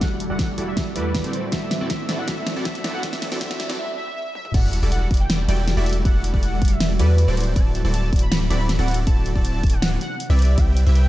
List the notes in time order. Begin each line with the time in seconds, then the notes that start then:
Already playing: D3 G3 A3 F#4, riser
0.01 E1 G3 E4 F#4 A4 D5 F#5, kick, snare, closed hi-hat
0.20 closed hi-hat
0.30 E1 G3 E4 F#4 A4 D5 F#5
0.39 kick, snare, closed hi-hat
0.58 E1 G3 E4 F#4 A4 D5, closed hi-hat
0.68 E5
0.77 kick, snare, closed hi-hat
0.96 E2 G3 E4 F#4 A4 B4 D5, closed hi-hat
1.15 kick, snare, closed hi-hat
1.24 D1 C4 E4 F#4 A4 C5 D5, closed hi-hat
1.33 E3 C4, closed hi-hat
1.52 D1 C4 E4 F#4 A4 D5 E5, kick, snare, closed hi-hat
1.71 snare, closed hi-hat
1.81 D1 C4 E4 F#4 A4 D5
1.90 E5, kick, snare, closed hi-hat
2.09 D1 C4 E4 F#4 A4 D5, snare, closed hi-hat
2.19 F#5
2.28 C4 E4 F#4 A4 D5 E5, kick, snare, closed hi-hat
2.47 snare, closed hi-hat
2.56 D1 C4 E4 F#4 A4 D5
2.65 E5, kick, snare, closed hi-hat
2.75 closed hi-hat
2.84 D1 C4 E4 F#4 A4 D5, snare, closed hi-hat
2.94 F#5
3.03 D1 C4 E4 F#4 A4 D5 E5, kick, snare, closed hi-hat
3.13 snare
3.22 snare, closed hi-hat
3.32 D1 C4 E4 F#4 A4 D5, snare
3.41 D1 C4 E4 F#4 A4 D5 E5, kick, snare, closed hi-hat
3.51 snare
3.60 snare, closed hi-hat
3.69 D1 C4 E4 F#4 A4 D5, snare
3.79 E5
3.98 E5
4.16 E5
4.35 E5, high tom
4.45 mid tom
4.54 E1 D3 G3 A3 E4 F#4 A4 D5 F#5, kick, closed hi-hat, crash, sub drop
4.73 closed hi-hat
4.83 E1 G3 E4 F#4 A4 D5
4.92 F#5, closed hi-hat
5.11 E1 G3 E4 F#4 D5, kick, closed hi-hat
5.14 closed hi-hat
5.17 G5, closed hi-hat
5.30 snare, closed hi-hat
5.48 E1 G3 E4 F#4 A4 D5 G5, closed hi-hat
5.68 snare, closed hi-hat
5.77 E1 G3 E4 F#4 A4 D5 E5
5.86 closed hi-hat
5.90 closed hi-hat
5.93 closed hi-hat
6.05 G3 E4 F#4 A4 D5 F#5, kick, closed hi-hat
6.24 closed hi-hat
6.34 E1 G3 E4 F#4 A4 D5 F#5, kick
6.43 closed hi-hat
6.62 E1 G3 E4 F#4 A4 D5, kick, closed hi-hat
6.65 closed hi-hat
6.68 E5, closed hi-hat
6.80 snare, closed hi-hat
6.99 E2 G3 E4 F#4 A4 B4 D5, closed hi-hat
7.18 closed hi-hat
7.28 D1 C4 E4 F#4 A4 C5 D5
7.37 C3 F#3 E4, closed hi-hat
7.41 closed hi-hat
7.44 closed hi-hat
7.56 D1 C4 E4 F#4 A4 D5 A5, kick, closed hi-hat
7.75 closed hi-hat
7.85 D1 C4 E4 F#4 A4 D5
7.94 A5, closed hi-hat
8.13 D1 C4 E4 F#4 A4 D5, kick, closed hi-hat
8.16 closed hi-hat
8.19 B5, closed hi-hat
8.32 snare, closed hi-hat
8.50 D1 C4 E4 F#4 A4 D5 B5, closed hi-hat
8.69 snare, closed hi-hat
8.79 D1 C4 E4 F#4 A4 D5 F#5
8.88 closed hi-hat
8.91 closed hi-hat
8.94 closed hi-hat
9.07 D1 C4 E4 F#4 A4 D5 A5, kick, closed hi-hat
9.26 closed hi-hat
9.36 D1 C4 E4 F#4 A4 D5 A5, kick
9.45 closed hi-hat
9.63 D1 C4 E4 F#4 D5, kick, closed hi-hat
9.67 closed hi-hat
9.70 F#5, closed hi-hat
9.82 snare, closed hi-hat
10.01 F#5, closed hi-hat
10.20 closed hi-hat
10.30 C2 C4 E4 G4 B4 D5 E5
10.39 B4, closed hi-hat
10.42 closed hi-hat
10.45 closed hi-hat
10.58 C2 C4 E4 G4 B4 E5 G5, kick, closed hi-hat
10.77 closed hi-hat
10.86 C2 C4 E4 G4 B4 E5
10.96 G5, closed hi-hat